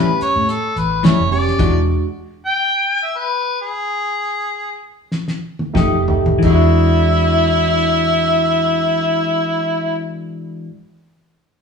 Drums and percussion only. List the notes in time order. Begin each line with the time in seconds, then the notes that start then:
0.21 closed hi-hat
0.49 closed hi-hat
0.77 closed hi-hat
1.04 snare, closed hi-hat
1.32 open hi-hat
1.48 snare
1.59 kick, closed hi-hat, crash
5.12 snare
5.28 snare
5.59 high tom
5.75 kick, snare, mid tom
6.08 floor tom
6.26 floor tom
6.42 kick, crash